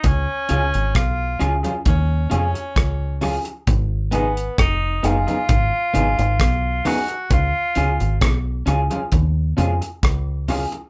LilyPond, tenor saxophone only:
\new Staff \with { instrumentName = "Tenor saxophone" } { \time 4/4 \key cis \mixolydian \tempo 4 = 66 cis'4 eis'8 r8 cis'8 cis'4 r8 | r8 b8 dis'8 eis'2 fis'8 | eis'4 r2. | }